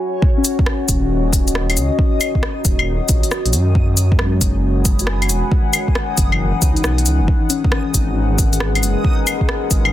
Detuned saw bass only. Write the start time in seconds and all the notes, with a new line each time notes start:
0.88 D#1
1.77 C#2
2.65 D#1
2.87 D#1
3.09 A#1
3.45 A#1
3.53 F#2
4.41 F#1
5.29 E1
6.18 F#1
6.40 F#1
6.62 C#2
6.84 B1
7.05 C#2
7.20 F#1
7.94 G#1
8.82 F#1
9.71 G#1